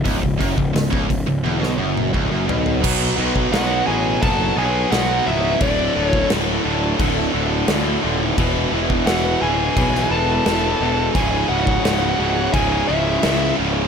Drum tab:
CC |----------------|x---x---x---x---|x---x---x---x---|x---x---x---x---|
HH |o-o-o-o---------|----------------|----------------|----------------|
SD |----o----o------|----o-------o---|----o-------o---|----o----o--o---|
T1 |--------o-------|----------------|----------------|----------------|
T2 |-----------o----|----------------|----------------|----------------|
FT |--------------oo|----------------|----------------|----------------|
BD |oooo-oo-----o---|o--o----o-------|o--o----o-------|o--o----o-------|

CC |x---x---x---x---|
HH |----------------|
SD |----o-------o---|
T1 |----------------|
T2 |----------------|
FT |----------------|
BD |o--o----o-------|